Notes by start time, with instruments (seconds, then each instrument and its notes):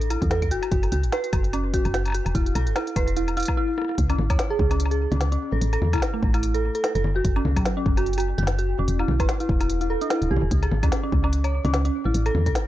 Already playing: fm bass A1
0.01 closed hi-hat
0.10 synth bell E4, closed hi-hat, high woodblock
0.22 fm bass E2, kick, closed hi-hat
0.31 synth bell A4, snare, closed hi-hat
0.42 kick, closed hi-hat, high woodblock
0.51 fm bass F#1, synth bell F#4, closed hi-hat
0.63 closed hi-hat, high woodblock
0.72 fm bass F#1, synth bell F#4, kick, closed hi-hat
0.83 closed hi-hat, high woodblock
0.92 fm bass C#2, synth bell F#4, closed hi-hat
1.03 fm bass A1, closed hi-hat
1.12 synth bell B4, snare, closed hi-hat, high woodblock
1.24 closed hi-hat
1.33 fm bass F#1, synth bell F#4, kick, closed hi-hat, high woodblock
1.44 closed hi-hat
1.53 synth bell C#4, closed hi-hat, high woodblock
1.74 synth bell F#4, kick, closed hi-hat
1.85 fm bass F#1, closed hi-hat, high woodblock
1.94 synth bell F#4, snare, closed hi-hat
2.05 closed hi-hat, high woodblock
2.08 high woodblock
2.10 high woodblock
2.12 synth bell F#4, closed hi-hat, high woodblock
2.26 fm bass E1, closed hi-hat, high woodblock
2.35 fm bass E1, synth bell E4, kick, closed hi-hat
2.46 closed hi-hat
2.55 fm bass B1, synth bell A4, closed hi-hat, high woodblock
2.67 fm bass G1, closed hi-hat
2.76 synth bell E4, snare, closed hi-hat, high woodblock
2.87 closed hi-hat
2.96 fm bass E1, synth bell B4, kick, closed hi-hat, high woodblock
3.08 closed hi-hat
3.16 synth bell E4, closed hi-hat
3.28 closed hi-hat, high woodblock
3.37 synth bell E4, closed hi-hat
3.40 closed hi-hat
3.43 closed hi-hat
3.45 kick, closed hi-hat, high woodblock
3.57 synth bell E4
3.78 synth bell E4, cross-stick
3.82 cross-stick
3.85 cross-stick
3.89 cross-stick
3.91 cross-stick
3.95 fm bass C#2, kick, cross-stick, closed hi-hat
4.10 synth bell C#4, closed hi-hat, high woodblock
4.19 fm bass G#1, low conga
4.30 fm bass E2, synth bell C#5, kick, closed hi-hat, high woodblock
4.39 snare, closed hi-hat
4.50 synth bell G#4
4.59 fm bass C#2, kick
4.71 synth bell C#4, closed hi-hat, high woodblock
4.80 closed hi-hat
4.86 high woodblock
4.91 synth bell G#4, closed hi-hat
5.12 fm bass C#2, synth bell C#4, closed hi-hat, low conga
5.21 snare, closed hi-hat
5.32 synth bell C#4, closed hi-hat
5.52 fm bass A1, synth bell A4
5.61 fm bass A1, closed hi-hat
5.73 synth bell A4, closed hi-hat, high woodblock
5.82 fm bass E2, low conga
5.93 fm bass C2, synth bell E4, kick, closed hi-hat, high woodblock
5.95 high woodblock
5.98 high woodblock
6.00 snare, closed hi-hat, high woodblock
6.14 synth bell A3
6.23 fm bass A1, kick
6.34 synth bell E4, closed hi-hat, high woodblock
6.43 closed hi-hat
6.54 synth bell A4, closed hi-hat
6.75 synth bell A4, closed hi-hat
6.84 snare, closed hi-hat
6.95 fm bass F#1, synth bell A4, closed hi-hat
7.04 low conga
7.16 synth bell F#4
7.25 fm bass F#1, kick, closed hi-hat
7.36 synth bell C#4, closed hi-hat, high woodblock
7.45 fm bass C#2, low conga
7.56 fm bass A1, synth bell F#3, kick, closed hi-hat, high woodblock
7.65 snare, closed hi-hat
7.77 synth bell C#4
7.86 fm bass F#1, kick
7.97 synth bell F#4, closed hi-hat, high woodblock
8.06 closed hi-hat
8.13 closed hi-hat
8.18 synth bell F#4, closed hi-hat, high woodblock
8.20 closed hi-hat
8.38 fm bass F#1, synth bell F#4, closed hi-hat
8.43 low conga
8.47 snare, closed hi-hat
8.59 synth bell F#4, closed hi-hat
8.79 fm bass E1, synth bell C#4
8.88 fm bass E1, closed hi-hat
8.99 synth bell E4, high woodblock
9.08 fm bass B1, low conga
9.20 fm bass G1, synth bell B4, kick, closed hi-hat, high woodblock
9.29 snare, closed hi-hat
9.40 synth bell E4, closed hi-hat
9.49 fm bass E1, kick
9.61 synth bell E4, closed hi-hat, high woodblock
9.70 closed hi-hat
9.81 synth bell E4, closed hi-hat
9.90 synth bell A4
10.01 synth bell D4, closed hi-hat
10.10 synth bell E4, snare, closed hi-hat
10.22 fm bass D1, closed hi-hat
10.31 fm bass B1, synth bell G4
10.36 low conga
10.42 fm bass E1
10.51 fm bass C#2, kick, closed hi-hat
10.63 synth bell G#4, closed hi-hat, high woodblock
10.72 fm bass G#1, low conga
10.83 fm bass E2, synth bell C#4, kick, closed hi-hat, high woodblock
10.92 snare, closed hi-hat
11.03 synth bell C#4
11.12 fm bass C#2, kick
11.24 synth bell C#4, high woodblock
11.33 closed hi-hat
11.44 synth bell C#5, closed hi-hat, high woodblock
11.65 fm bass C#2, synth bell C#4, closed hi-hat, low conga
11.74 snare, closed hi-hat
11.85 synth bell C#4, closed hi-hat
12.05 fm bass A1, synth bell E4
12.14 fm bass A1, closed hi-hat
12.26 synth bell A4, closed hi-hat, high woodblock
12.35 fm bass E2, low conga
12.46 fm bass C2, synth bell A4, kick, closed hi-hat
12.55 snare, closed hi-hat